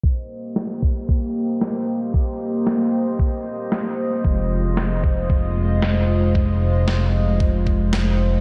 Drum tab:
SD |--o---o-|--o---o-|--o---o-|--o---o-|
BD |o--oo---|o---o---|o--oo---|o---oo--|